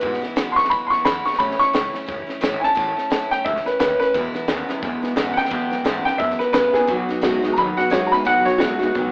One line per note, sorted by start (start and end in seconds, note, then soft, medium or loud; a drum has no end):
0.00 0.22 E2 medium
0.00 0.22 G#2 medium
0.00 0.22 B2 medium
0.00 0.22 E3 medium
0.00 0.21 G#3 medium
0.00 0.21 B3 medium
0.00 0.20 E4 medium
0.00 0.34 B4 loud
0.00 kick loud
0.00 snare soft
0.14 snare soft
0.21 0.35 E3 soft
0.21 0.35 G#3 medium
0.21 0.36 B3 medium
0.21 0.35 E4 medium
0.21 muted upright bass stroke medium
0.21 snare soft
0.36 0.57 E2 medium
0.36 0.56 A2 medium
0.36 0.57 B2 medium
0.36 0.57 E3 medium
0.36 0.56 G#3 medium
0.36 0.56 B3 medium
0.36 0.54 E4 medium
0.36 snare loud
0.36 hi-hat pedal medium
0.52 0.70 E4 soft
0.52 0.54 C6 medium
0.56 0.69 E3 soft
0.56 0.69 G#3 soft
0.56 0.70 B3 soft
0.56 0.70 C#6 loud
0.56 muted upright bass stroke soft
0.56 snare soft
0.65 snare soft
0.70 0.90 B2 medium
0.70 0.91 E3 medium
0.70 0.91 G#3 medium
0.70 0.90 B3 medium
0.70 0.89 E4 medium
0.70 0.90 B5 medium
0.70 kick loud
0.70 snare soft
0.87 1.05 E4 medium
0.87 0.89 C6 medium
0.87 1.04 C#6 medium
0.92 1.05 E3 soft
0.92 1.05 G#3 medium
0.92 1.05 B3 soft
0.92 muted upright bass stroke soft
0.92 snare soft
1.05 1.25 E2 medium
1.05 1.26 E2 medium
1.05 1.26 B2 medium
1.05 1.26 E3 medium
1.05 1.25 G#3 medium
1.05 1.24 B3 medium
1.05 1.24 E4 medium
1.05 1.25 B5 medium
1.05 snare loud
1.05 hi-hat pedal medium
1.25 1.38 E3 soft
1.25 1.39 G#3 soft
1.25 1.39 B3 medium
1.25 1.39 E4 medium
1.25 1.39 C#6 medium
1.25 muted upright bass stroke medium
1.25 snare soft
1.34 snare soft
1.38 1.59 A1 medium
1.38 1.60 A2 medium
1.38 1.60 E3 medium
1.38 1.60 A3 medium
1.38 1.59 C#4 medium
1.38 1.58 E4 medium
1.38 1.59 B5 loud
1.38 kick loud
1.38 snare soft
1.51 snare soft
1.59 1.73 A3 soft
1.59 1.73 C#4 medium
1.59 1.74 E4 medium
1.59 1.93 C#6 loud
1.59 muted upright bass stroke medium
1.59 snare soft
1.73 1.94 C#2 medium
1.73 1.94 A2 medium
1.73 1.94 E3 medium
1.73 1.93 A3 medium
1.73 1.92 C#4 medium
1.73 1.91 E4 medium
1.73 snare loud
1.73 hi-hat pedal medium
1.92 2.06 A3 soft
1.92 2.07 C#4 medium
1.92 2.07 E4 medium
1.92 muted upright bass stroke medium
1.92 snare soft
2.06 2.27 F#1 medium
2.06 2.28 E3 medium
2.06 2.27 A3 medium
2.06 2.26 C#4 medium
2.06 2.25 E4 medium
2.06 kick loud
2.06 snare soft
2.26 2.40 A3 soft
2.26 2.41 C#4 medium
2.26 2.41 E4 medium
2.26 muted upright bass stroke medium
2.26 snare soft
2.41 2.62 G#1 loud
2.41 2.62 A2 loud
2.41 2.62 E3 loud
2.41 2.62 A3 loud
2.41 2.61 C#4 loud
2.41 2.60 E4 loud
2.41 snare loud
2.41 hi-hat pedal medium
2.60 2.74 A3 soft
2.60 2.74 C#4 medium
2.60 2.75 E4 medium
2.60 2.62 G#5 medium
2.60 muted upright bass stroke medium
2.60 snare soft
2.64 3.30 A5 loud
2.75 2.97 A1 medium
2.75 2.96 A2 medium
2.75 2.97 E3 medium
2.75 2.96 A3 medium
2.75 2.95 C#4 medium
2.75 2.95 E4 medium
2.75 kick loud
2.75 snare soft
2.96 3.10 A3 soft
2.96 3.11 C#4 medium
2.96 3.11 E4 medium
2.96 snare soft
3.10 3.30 B1 medium
3.10 3.31 A2 medium
3.10 3.31 E3 medium
3.10 3.31 A3 medium
3.10 3.31 C#4 medium
3.10 3.30 E4 loud
3.10 snare loud
3.10 hi-hat pedal medium
3.31 3.44 A3 soft
3.31 3.45 C#4 medium
3.31 3.45 E4 medium
3.31 3.45 G5 medium
3.31 muted upright bass stroke soft
3.31 snare soft
3.45 3.65 C#2 medium
3.45 3.66 E3 medium
3.45 3.65 A3 medium
3.45 3.64 C#4 medium
3.45 3.63 E4 medium
3.45 3.65 E5 medium
3.45 kick loud
3.45 snare soft
3.57 snare soft
3.64 3.79 A3 soft
3.64 3.79 C#4 soft
3.64 3.79 E4 medium
3.64 3.78 B4 medium
3.64 muted upright bass stroke medium
3.64 snare soft
3.79 4.00 D#2 medium
3.79 4.00 A2 medium
3.79 4.00 E3 medium
3.79 4.00 A3 medium
3.79 4.00 C#4 medium
3.79 3.98 E4 medium
3.79 3.98 B4 loud
3.79 snare loud
3.79 hi-hat pedal medium
4.00 4.14 A3 soft
4.00 4.15 C#4 soft
4.00 4.14 E4 medium
4.00 4.14 B4 loud
4.00 muted upright bass stroke medium
4.00 snare soft
4.14 4.46 E2 medium
4.14 4.35 E2 medium
4.14 4.34 E2 medium
4.14 4.35 B2 medium
4.14 4.46 B2 medium
4.14 4.34 E3 medium
4.14 4.34 G#3 medium
4.14 4.33 B3 medium
4.14 4.33 E4 loud
4.14 kick loud
4.14 snare soft
4.34 4.47 E3 medium
4.34 4.47 G#3 medium
4.34 4.47 B3 medium
4.34 4.48 E4 medium
4.34 snare soft
4.48 4.68 D#2 medium
4.48 4.68 E2 medium
4.48 4.67 E2 medium
4.48 4.69 B2 medium
4.48 4.67 C#3 medium
4.48 4.69 E3 medium
4.48 4.69 G#3 medium
4.48 4.68 B3 medium
4.48 4.67 E4 loud
4.48 snare loud
4.48 hi-hat pedal medium
4.68 4.81 E2 medium
4.68 4.81 C#3 medium
4.68 4.81 E3 medium
4.68 4.82 G#3 medium
4.68 4.82 B3 medium
4.68 4.83 E4 medium
4.68 snare soft
4.82 5.14 E2 medium
4.82 5.01 E2 medium
4.82 5.14 B2 loud
4.82 5.02 E3 medium
4.82 5.01 G#3 medium
4.82 5.01 B3 medium
4.82 5.00 E4 medium
4.82 kick loud
4.82 snare soft
5.02 5.15 E3 soft
5.02 5.16 G#3 soft
5.02 5.16 B3 medium
5.02 5.16 E4 medium
5.02 muted upright bass stroke medium
5.02 snare soft
5.16 5.37 E2 medium
5.16 5.35 E2 medium
5.16 5.36 G#2 medium
5.16 5.37 B2 loud
5.16 5.35 C#3 medium
5.16 5.37 E3 medium
5.16 5.36 G#3 medium
5.16 5.36 B3 loud
5.16 5.35 E4 loud
5.16 snare loud
5.16 hi-hat pedal medium
5.33 5.48 E2 medium
5.33 5.50 C#3 medium
5.33 5.50 B3 soft
5.33 5.50 E4 medium
5.33 5.36 F#5 medium
5.33 muted upright bass stroke medium
5.37 5.49 E3 soft
5.37 5.50 G#3 soft
5.37 6.04 G5 loud
5.37 snare soft
5.45 snare soft
5.50 5.82 E2 medium
5.50 5.71 E2 medium
5.50 5.83 B2 loud
5.50 5.72 B2 medium
5.50 5.70 B2 medium
5.50 5.71 E3 medium
5.50 5.70 G#3 medium
5.50 5.69 B3 medium
5.50 5.68 E4 loud
5.50 kick loud
5.70 5.84 E3 soft
5.70 5.84 G#3 medium
5.70 5.84 B3 medium
5.70 5.84 E4 medium
5.70 muted upright bass stroke medium
5.70 snare soft
5.84 6.03 E2 medium
5.84 6.06 E2 medium
5.84 6.04 G#2 medium
5.84 6.06 B2 medium
5.84 6.04 C#3 medium
5.84 6.06 E3 medium
5.84 6.05 G#3 loud
5.84 6.05 B3 medium
5.84 6.04 E4 loud
5.84 snare loud
5.84 hi-hat pedal medium
6.05 6.18 E2 medium
6.05 6.19 C#3 medium
6.05 6.18 E3 soft
6.05 6.19 G#3 soft
6.05 6.20 B3 soft
6.05 6.20 E4 medium
6.05 6.19 G5 medium
6.05 muted upright bass stroke medium
6.05 snare soft
6.18 6.52 E2 medium
6.18 6.39 F#2 medium
6.18 6.52 B2 medium
6.18 6.40 E3 medium
6.18 6.40 G#3 medium
6.18 6.39 B3 medium
6.18 6.38 E4 medium
6.18 6.39 E5 loud
6.18 kick loud
6.18 snare soft
6.30 snare soft
6.39 6.52 E3 soft
6.39 6.53 G#3 soft
6.39 6.53 B3 soft
6.39 6.52 E4 medium
6.39 6.52 B4 medium
6.39 muted upright bass stroke medium
6.39 snare soft
6.53 6.74 E2 medium
6.53 6.73 E2 medium
6.53 6.74 B2 medium
6.53 6.73 C#3 medium
6.53 6.74 E3 medium
6.53 6.75 G#3 medium
6.53 6.74 B3 medium
6.53 6.73 E4 medium
6.53 6.74 B4 loud
6.53 snare loud
6.53 hi-hat pedal medium
6.73 6.88 E2 medium
6.73 6.88 C#3 medium
6.73 6.87 E3 soft
6.73 6.88 G#3 soft
6.73 6.87 B3 medium
6.73 6.89 E4 medium
6.73 6.88 G#4 medium
6.73 muted upright bass stroke medium
6.73 snare soft
6.87 7.08 B1 medium
6.87 7.09 B2 medium
6.87 7.20 B2 medium
6.87 7.09 F#3 medium
6.87 7.21 F#3 loud
6.87 7.09 B3 medium
6.87 7.09 D#4 medium
6.87 7.07 F#4 medium
6.87 kick loud
6.87 snare soft
7.09 7.21 B3 medium
7.09 7.21 D#4 medium
7.09 7.21 F#4 medium
7.09 muted upright bass stroke medium
7.09 snare soft
7.21 7.43 C#2 medium
7.21 7.43 B2 medium
7.21 7.42 B2 medium
7.21 7.43 F#3 medium
7.21 7.42 G#3 medium
7.21 7.43 B3 medium
7.21 7.42 D#4 loud
7.21 7.41 F#4 loud
7.21 snare loud
7.21 hi-hat pedal medium
7.43 7.56 B2 medium
7.43 7.57 G#3 medium
7.43 7.55 B3 medium
7.43 7.56 D#4 medium
7.43 7.57 F#4 medium
7.43 muted upright bass stroke medium
7.43 snare soft
7.53 7.77 F#3 medium
7.53 7.77 B3 medium
7.53 7.56 A#5 medium
7.58 7.78 D#2 medium
7.58 7.90 B2 medium
7.58 7.90 F#3 loud
7.58 7.76 D#4 medium
7.58 7.75 F#4 medium
7.58 7.78 B5 loud
7.58 kick loud
7.58 snare soft
7.77 7.90 B3 soft
7.77 7.90 D#4 soft
7.77 7.90 F#4 medium
7.77 7.91 F#5 medium
7.77 muted upright bass stroke medium
7.77 snare soft
7.90 8.11 B1 loud
7.90 8.11 B2 medium
7.90 8.12 F#3 medium
7.90 8.11 G#3 medium
7.90 8.11 B3 medium
7.90 8.10 D#4 medium
7.90 8.09 F#4 loud
7.90 8.11 C#5 medium
7.90 snare loud
7.90 hi-hat pedal medium
8.07 8.25 F#4 medium
8.07 8.09 A#5 medium
8.11 8.26 B2 medium
8.11 8.26 G#3 medium
8.11 8.24 B3 soft
8.11 8.24 D#4 soft
8.11 8.26 B5 loud
8.11 muted upright bass stroke medium
8.11 snare soft
8.25 8.46 F#1 medium
8.25 8.46 B2 medium
8.25 8.58 B2 medium
8.25 8.46 F#3 medium
8.25 8.59 F#3 medium
8.25 8.46 B3 medium
8.25 8.46 D#4 medium
8.25 8.44 F#4 medium
8.25 8.46 F#5 loud
8.25 kick loud
8.25 snare soft
8.45 8.59 B3 soft
8.45 8.59 D#4 soft
8.45 8.60 F#4 medium
8.45 8.60 C#5 loud
8.45 muted upright bass stroke medium
8.45 snare soft
8.58 8.80 B1 medium
8.58 8.80 B2 medium
8.58 8.79 B2 loud
8.58 8.81 F#3 medium
8.58 8.80 G#3 medium
8.58 8.80 B3 medium
8.58 8.79 D#4 medium
8.58 9.12 F#4 loud
8.58 8.78 F#4 medium
8.58 snare loud
8.58 hi-hat pedal medium
8.79 8.93 B2 medium
8.79 8.94 G#3 medium
8.79 8.94 B3 medium
8.79 8.94 D#4 medium
8.79 8.94 F#4 medium
8.79 muted upright bass stroke medium
8.79 snare soft
8.94 9.12 C#2 medium
8.94 9.12 B2 medium
8.94 9.12 F#3 medium
8.94 9.12 B3 medium
8.94 9.12 D#4 medium
8.94 9.12 F#4 medium
8.94 kick loud
8.94 snare soft